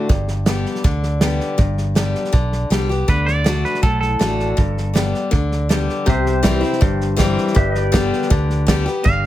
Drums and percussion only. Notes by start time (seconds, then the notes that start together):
0.09 kick, snare
0.28 snare
0.46 snare, hi-hat pedal
0.66 snare
0.75 snare
0.84 kick, snare
1.03 snare
1.21 snare, hi-hat pedal
1.40 snare
1.59 kick, snare
1.78 snare
1.96 snare, hi-hat pedal
2.15 snare
2.25 snare
2.33 kick, snare
2.53 snare
2.72 snare, hi-hat pedal
2.90 snare
3.08 kick, snare
3.28 snare
3.46 snare, hi-hat pedal
3.65 snare
3.74 snare
3.83 kick, snare
4.02 snare
4.21 snare, hi-hat pedal
4.40 snare
4.58 kick, snare
4.78 snare
4.96 snare, hi-hat pedal
5.14 snare
5.33 kick, snare
5.52 snare
5.70 snare, hi-hat pedal
5.89 snare
6.08 kick, snare
6.26 snare
6.44 kick, snare, hi-hat pedal
6.63 snare
6.73 snare
6.82 kick, snare
7.01 snare
7.19 kick, snare, hi-hat pedal
7.38 snare
7.47 snare
7.56 kick, snare
7.75 snare
7.94 kick, snare, hi-hat pedal
8.13 snare
8.22 snare
8.31 kick, snare
8.50 snare
8.68 kick, snare, hi-hat pedal
8.87 snare
9.06 kick, snare